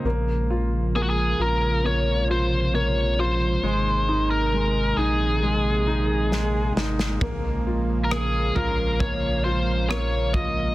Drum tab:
SD |----------------|------------o-oo|----r-------r---|
FT |----------------|----------------|o-----o-o-----o-|
BD |----------------|----------------|o-------o-----o-|